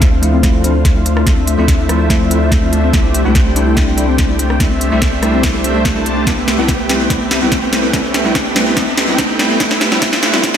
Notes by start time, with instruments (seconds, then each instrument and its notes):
Already playing: sub bass D2, analog polysynth A3 D4 F4 C5 F5, riser
0.02 synth arpeggio sound A3, kick, snare, closed hi-hat
0.13 synth arpeggio sound C4
0.21 tine electric piano F3 A3 C4 E4, synth arpeggio sound A3, closed hi-hat
0.33 synth arpeggio sound C4
0.42 tine electric piano F3 A3 C4 E4, synth arpeggio sound D4, kick, snare, closed hi-hat
0.54 synth arpeggio sound E4
0.63 tine electric piano F3 A3 C4 E4, synth arpeggio sound A3, closed hi-hat
0.75 synth arpeggio sound C4
0.85 synth arpeggio sound A3, kick, snare, closed hi-hat
0.95 tine electric piano F3 A3 C4 E4, synth arpeggio sound C4
1.06 synth arpeggio sound D4, closed hi-hat
1.17 synth arpeggio sound E4, cross-stick
1.25 sub bass D2, tine electric piano F3 A3 C4 E4, synth arpeggio sound A3, analog polysynth A3 D4 F4 C5 E5, kick, snare, closed hi-hat
1.38 synth arpeggio sound C4
1.47 synth arpeggio sound A3, closed hi-hat
1.57 sub bass D2, tine electric piano F3 A3 C4 E4, analog polysynth A3 D4 F4 C5 E5, synth arpeggio sound C4
1.68 synth arpeggio sound D4, kick, snare, closed hi-hat
1.79 synth arpeggio sound E4
1.88 tine electric piano F3 A3 C4 E4, synth arpeggio sound A3, cross-stick, closed hi-hat
2.00 synth arpeggio sound C4
2.09 tine electric piano F3 A3 C4 E4, synth arpeggio sound A3, kick, snare, closed hi-hat
2.21 synth arpeggio sound C4
2.30 tine electric piano F3 A3 C4 E4, synth arpeggio sound D4, closed hi-hat
2.42 synth arpeggio sound E4
2.52 synth arpeggio sound A3, kick, snare, closed hi-hat
2.62 tine electric piano F3 A3 C4 E4, synth arpeggio sound C4
2.72 synth arpeggio sound A3, closed hi-hat
2.84 synth arpeggio sound C4
2.92 sub bass C2, tine electric piano G3 A3 D4 E4, kick, snare, closed hi-hat
3.04 synth arpeggio sound E4
3.14 synth arpeggio sound A3, closed hi-hat
3.24 sub bass C2, tine electric piano G3 A3 D4 E4, analog polysynth A3 D4 G4 C5 G5, synth arpeggio sound C4
3.35 synth arpeggio sound A3, kick, snare, closed hi-hat
3.46 synth arpeggio sound C4
3.55 tine electric piano G3 A3 D4 E4, synth arpeggio sound D4, closed hi-hat
3.67 synth arpeggio sound E4
3.76 tine electric piano G3 A3 D4 E4, synth arpeggio sound A3, kick, snare, closed hi-hat
3.88 synth arpeggio sound C4
3.96 tine electric piano G3 A3 D4 E4, synth arpeggio sound A3, closed hi-hat
4.09 synth arpeggio sound C4
4.18 synth arpeggio sound D4, kick, snare, closed hi-hat
4.28 tine electric piano G3 A3 D4 E4, synth arpeggio sound E4
4.39 synth arpeggio sound A3, closed hi-hat
4.50 synth arpeggio sound C4, cross-stick
4.59 sub bass C2, tine electric piano G3 A3 D4 E4, synth arpeggio sound A3, analog polysynth A3 D4 C5 E5, kick, snare, closed hi-hat
4.71 synth arpeggio sound C4
4.81 synth arpeggio sound D4, closed hi-hat
4.91 sub bass C2, tine electric piano G3 A3 D4 E4, analog polysynth A3 D4 G4 C5 E5, synth arpeggio sound E4
5.02 synth arpeggio sound A3, kick, snare, closed hi-hat
5.13 synth arpeggio sound C4
5.21 tine electric piano G3 A3 D4 E4, synth arpeggio sound A3, cross-stick, closed hi-hat
5.34 synth arpeggio sound C4
5.42 tine electric piano G3 A3 D4 E4, kick, snare, closed hi-hat
5.54 synth arpeggio sound E4
5.64 synth arpeggio sound D4, closed hi-hat
5.74 tine electric piano G3 A3 D4 A4, synth arpeggio sound A3
5.85 synth arpeggio sound A3, kick, snare, closed hi-hat
5.95 sub bass C2, tine electric piano G3 A3 D4 E4, analog polysynth A3 D4 G4 C5 A5, synth arpeggio sound C4
6.06 synth arpeggio sound A3, closed hi-hat
6.17 synth arpeggio sound D4
6.26 sub bass C2, tine electric piano G3 B3 C4 E4, synth arpeggio sound A3, analog polysynth A3 C4 G4 B4 E5, kick, snare, closed hi-hat
6.38 synth arpeggio sound B3
6.48 synth arpeggio sound G4, snare, closed hi-hat
6.57 sub bass C2, tine electric piano G3 B3 C4 E4, analog polysynth A3 C4 G4 B4 G5, synth arpeggio sound E4
6.68 synth arpeggio sound A3, kick, snare, closed hi-hat
6.79 synth arpeggio sound B3
6.88 tine electric piano G3 B3 C4 E4, synth arpeggio sound A3, snare, closed hi-hat
7.00 synth arpeggio sound B3
7.09 sub bass C2, tine electric piano G3 B3 C4 E4, analog polysynth A3 C4 G4 B4 E5, synth arpeggio sound A3, kick, snare, closed hi-hat
7.21 synth arpeggio sound B3
7.31 synth arpeggio sound G4, snare, closed hi-hat
7.41 sub bass C2, tine electric piano G3 B3 C4 E4, analog polysynth A3 C4 G4 B4 G5, synth arpeggio sound E4
7.52 synth arpeggio sound A3, kick, snare, closed hi-hat
7.63 synth arpeggio sound B3
7.72 tine electric piano G3 B3 C4 E4, synth arpeggio sound A3, snare, closed hi-hat
7.83 synth arpeggio sound B3
7.92 sub bass C2, tine electric piano G3 B3 C4 E4, analog polysynth A3 C4 G4 B4 E5, synth arpeggio sound A3, kick, snare, closed hi-hat
8.04 synth arpeggio sound B3
8.14 synth arpeggio sound G4, snare, closed hi-hat
8.24 sub bass C2, tine electric piano G3 B3 C4 E4, analog polysynth A3 C4 G4 B4 G5, synth arpeggio sound E4
8.35 synth arpeggio sound A3, kick, snare, closed hi-hat
8.46 synth arpeggio sound B3
8.55 tine electric piano G3 B3 C4 E4, synth arpeggio sound A3, snare, closed hi-hat
8.67 synth arpeggio sound B3
8.76 sub bass C2, tine electric piano G3 B3 C4 E4, analog polysynth A3 C4 G4 E5, kick, snare, closed hi-hat
8.87 synth arpeggio sound B3
8.97 synth arpeggio sound G4, snare, closed hi-hat
9.08 sub bass C2, tine electric piano G3 B3 C4 E4, analog polysynth A3 C4 G4 B4 G5, synth arpeggio sound E4
9.18 synth arpeggio sound A3, kick, snare, closed hi-hat
9.29 synth arpeggio sound B3
9.38 tine electric piano G3 B3 C4 E4, synth arpeggio sound A3, snare, closed hi-hat
9.50 synth arpeggio sound B3
9.59 sub bass C2, tine electric piano G3 B3 C4 E4, synth arpeggio sound A3, analog polysynth A3 C4 G4 B4 E5, kick, snare, closed hi-hat
9.71 synth arpeggio sound B3, snare
9.81 synth arpeggio sound G4, snare, closed hi-hat
9.91 sub bass C2, tine electric piano G3 B3 C4 E4, analog polysynth A3 C4 G4 B4 G5, synth arpeggio sound E4, snare
10.01 sub bass C2, tine electric piano G3 B3 C4 E4, analog polysynth A3 E5, synth arpeggio sound A3, kick, snare, closed hi-hat
10.13 synth arpeggio sound B3, snare
10.23 synth arpeggio sound G4, snare, closed hi-hat
10.33 sub bass C2, tine electric piano G3 B3 C4 E4, analog polysynth A3 C4 G4 B4 G5, synth arpeggio sound E4, snare
10.43 sub bass C2, tine electric piano G3 B3 C4, analog polysynth A3 G4 E5, synth arpeggio sound A3, kick, snare, closed hi-hat